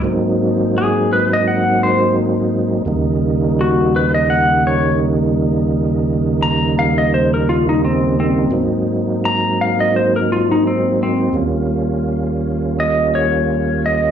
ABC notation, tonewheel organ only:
X:1
M:4/4
L:1/8
Q:"Swing 16ths" 1/4=85
K:Ebdor
V:1 name="Tonewheel organ"
[A,,G,B,CE]8 | [E,,D,=G,B,E]8- | [E,,D,=G,B,E]8 | [A,,G,B,CE]8 |
[E,,=G,B,DF]8 |]